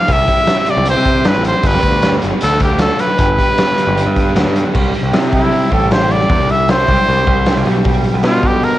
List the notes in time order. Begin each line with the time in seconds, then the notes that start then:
Already playing: F5
0.08 C2 C3 E3 G3 C4 E4 G4, kick, closed hi-hat
0.12 E5
0.28 kick, closed hi-hat
0.47 snare, closed hi-hat
0.66 C3 G3 C4 E4 D5, closed hi-hat
0.77 C2
0.85 E3 C4 E4 G4, closed hi-hat
0.90 C5
0.97 C3
1.05 kick, closed hi-hat
1.25 G2 B4, snare, closed hi-hat
1.36 A1
1.45 C5, closed hi-hat
1.63 G1 G2 D3 G3 B3 D4 G4 B4, kick, closed hi-hat
1.74 G2
1.83 D2, kick, closed hi-hat
2.02 snare, closed hi-hat
2.22 G1 G2 D3 G3 B3 D4, closed hi-hat
2.41 D2 D3 F3 A3 D4 A4, closed hi-hat
2.45 D4
2.60 G4, kick, closed hi-hat
2.72 D2
2.79 A4, snare, closed hi-hat
2.99 D3 F3 A3 D4 B4, closed hi-hat
3.18 G1 G2 D3 G3 B3 D4 G4, kick, closed hi-hat
3.39 kick, closed hi-hat
3.58 snare, closed hi-hat
3.77 G2 D3 G3 B3 D4, closed hi-hat
3.87 G1
3.96 B3 D4 G4, closed hi-hat
4.07 G2
4.16 kick, closed hi-hat
4.35 D2, snare, closed hi-hat
4.45 G2
4.56 closed hi-hat
4.75 C2 C3 G3 C4, kick, crash
4.94 C3 G3, open hi-hat
5.03 C2
5.12 C3 G3 C4 E4, snare, open hi-hat
5.32 C3 G3 E4 G4, kick, open hi-hat
5.52 C3 G3 C4, open hi-hat
5.71 A1 C3 G3 C4 G4 A4, kick, open hi-hat
5.90 C3 G3 E4 C5, snare, open hi-hat
6.11 C3 G3 D5, open hi-hat
6.21 snare
6.29 E2 C3 G3 C4, kick, open hi-hat
6.40 C2
6.49 C3 G3 E5, open hi-hat
6.68 C3 G3 C4 E4 C5, snare, open hi-hat
6.88 C2 C3 G3 G4, kick, open hi-hat
7.07 C2 C3 G3 C4, open hi-hat
7.27 C2 C3 G3 C4 G4, kick, open hi-hat
7.46 C3 G3 E4, snare, open hi-hat
7.56 C2
7.65 B1 B2 G3 B3, open hi-hat
7.85 B2 G3 B3, kick, open hi-hat
8.04 B2 G3, open hi-hat
8.14 B1
8.23 B2 G3 B3 D4 F4, snare, open hi-hat
8.43 B2 G3 G4 A4, kick, open hi-hat
8.63 B2 G3 B3 A#4, open hi-hat